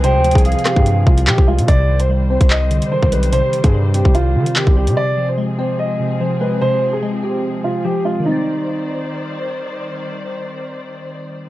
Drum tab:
HH |x-----x-x-x-x-x-x-x-----x--------x-----------x--|x--------x-----------x--------x--x--------x--x--|x-----x--x--------x-----x--------x-----------x--|------------------------------------------------|
CP |------------------x-----------------x-----------|------------------------x-----------------------|------------------------------------x-----------|------------------------------------------------|
SD |------------------r-----------------------------|------------------------------------------------|------------------------------------------------|------------------------------------------------|
BD |---------o-----------o--------o--------o--------|o--------------------o-----------------o--------|---------o-----------o-----------------o--------|------------------------------------------------|

HH |------------------------------------------------|------------------------------------------------|------------------------------------------------|
CP |------------------------------------------------|------------------------------------------------|------------------------------------------------|
SD |------------------------------------------------|------------------------------------------------|------------------------------------------------|
BD |------------------------------------------------|------------------------------------------------|------------------------------------------------|